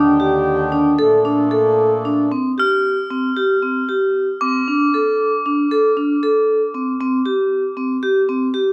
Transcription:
Already playing: D#2 D3 D4 G4
0.20 G4
0.72 D4
0.99 A#2 A3 D4 A4
1.25 D4
1.51 A4
2.05 D4
2.32 C4
2.58 G4 F6
3.11 C4
3.37 G4
3.63 C4
3.89 G4
4.41 C4 D6
4.68 D4
4.94 A4
5.46 D4
5.71 A4
5.97 D4
6.23 A4
6.75 C4
7.01 C4
7.26 G4
7.77 C4
8.03 G4
8.29 C4
8.54 G4

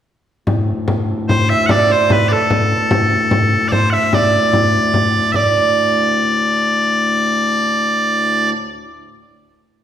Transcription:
0.47 D2 A2, frame drum
0.88 frame drum
1.08 frame drum
1.29 C5, frame drum
1.49 E5
1.66 D5 F#5, frame drum
1.70 D5
1.90 C5
2.10 B4, frame drum
2.28 A4 D5, frame drum
2.33 A4
2.50 frame drum
2.91 frame drum
3.31 frame drum
3.52 frame drum
3.68 C5 D5, frame drum
3.90 E5 F#5
4.13 D5, frame drum
4.33 frame drum
4.53 frame drum
4.94 frame drum
5.14 frame drum
5.32 D2 A2 D5 E5, frame drum
5.36 D5

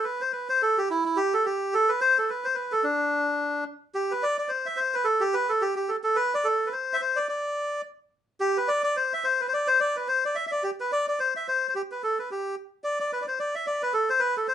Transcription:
0.04 B4
0.21 C5
0.32 B4
0.49 C5
0.62 A4
0.78 G4
0.90 E4
1.05 E4
1.16 G4
1.34 A4
1.45 G4
1.74 A4
1.89 B4
2.01 C5
2.18 A4
2.30 B4
2.44 C5
2.55 B4
2.72 A4
2.83 D4
3.95 G4
4.11 B4
4.23 D5
4.38 D5
4.49 C5
4.66 E5
4.76 C5
4.94 B4
5.04 A4
5.20 G4
5.34 B4
5.49 A4
5.61 G4
5.76 G4
5.88 A4
6.04 A4
6.16 B4
6.34 D5
6.44 A4
6.66 B4
6.73 C5
6.93 E5
7.01 C5
7.16 D5
7.29 D5
8.40 G4
8.57 B4
8.68 D5
8.84 D5
8.96 C5
9.13 E5
9.24 C5
9.41 B4
9.48 C5
9.53 D5
9.68 C5
9.80 D5
9.96 B4
10.08 C5
10.25 D5
10.35 E5
10.47 E5
10.52 D5
10.64 G4
10.80 B4
10.92 D5
11.09 D5
11.20 C5
11.36 E5
11.48 C5
11.69 C5
11.75 G4
11.91 B4
12.03 A4
12.19 B4
12.31 G4
12.84 D5
13.00 D5
13.13 B4
13.22 D5
13.28 C5
13.39 D5
13.55 E5
13.67 D5
13.82 B4
13.93 A4
14.10 C5
14.20 B4
14.37 A4
14.48 C5

